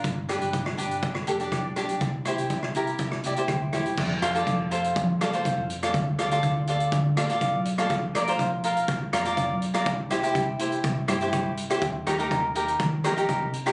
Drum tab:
CC |----------------|----------------|x---------------|----------------|
HH |x-xxx-xxx-xxx-xx|x-xxx-xxx-xxx-xx|--xxx-xxx-xxx-xx|x-xxx-xxx-xxx-xx|
SD |--r--r---r--r-r-|--r--r---r--r-r-|--r-------r----r|--r-------r----r|
BD |o---o---o---o---|o---o---o---o---|o---o---o---o---|o---o---o---o---|

CC |----------------|----------------|----------------|
HH |x-xxx-xxx-xxx-xx|x-xxx-xxx-xxx-xx|x-xxx-xxx-xxx-xx|
SD |--r-------r----r|--r-------r-r--r|--r-------r----r|
BD |o---o---o---o---|o---o---o---o---|o---o---o---o---|